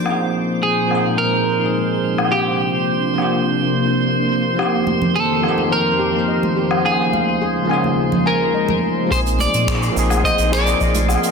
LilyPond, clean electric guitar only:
\new Staff \with { instrumentName = "Clean electric guitar" } { \time 4/4 \key bes \mixolydian \tempo 4 = 106 r4 aes'4 bes'2 | g'4. r2 r8 | r4 a'4 bes'2 | aes'2~ aes'8 bes'4 r8 |
c''8 d''4. ees''8 d''4. | }